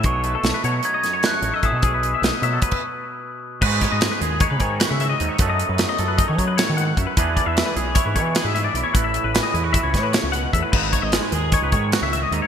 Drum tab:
CC |------------------|---------x--------|x-----------------|------------------|
HH |x-x-x-x-x-x-x-x-x-|x-x-x-x-x---------|--x-x-x-x-x-x-x-x-|x-x-x-x-x-x-x-x-x-|
SD |----o-----o-o-----|----o-------------|--o-o-------o-----|----o-------o-----|
BD |o---------------o-|o-------oo--------|o-o-----o-o-------|o-------o-o-----o-|

CC |------------------|------------------|x-----------------|
HH |x-x-x-x-x-x-x-x-x-|x-x-x-x-x-x-x-x-x-|--x-x-x-x-x-x-x-x-|
SD |----o-------o-----|----o-----o-o-----|----o-------o-----|
BD |o-o-----o-o-------|o-------o-o-----o-|o-o-----o-o-------|